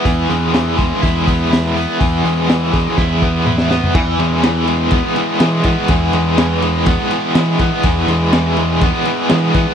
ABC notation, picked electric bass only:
X:1
M:4/4
L:1/16
Q:1/4=123
K:E
V:1 name="Picked electric bass" clef=bass
E,,2 E,,6 E,,8 | E,,2 E,,6 E,,8 | E,,2 E,,8 z2 E,2 E, z | E,,2 E,,8 z2 E,2 E, z |
E,,2 E,,8 z2 E,2 E, z |]